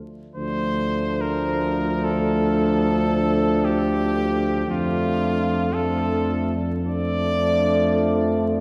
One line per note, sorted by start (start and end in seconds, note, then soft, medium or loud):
0.35 4.64 D2 medium
0.35 4.64 F3 medium
0.35 4.64 A3 medium
0.35 4.63 D4 medium
0.35 1.22 C5 loud
1.21 2.06 A#4 loud
2.04 3.66 A4 loud
3.65 4.69 G4 loud
4.66 8.60 F2 medium
4.66 5.71 F3 medium
4.66 5.72 A3 medium
4.66 5.70 D4 medium
4.70 5.75 F4 loud
5.72 6.54 F3 medium
5.72 6.55 A3 medium
5.72 6.82 D4 medium
5.72 6.56 A4 loud
6.84 8.60 F3 medium
6.84 8.60 A3 medium
6.84 8.60 D4 medium
6.84 8.40 D5 loud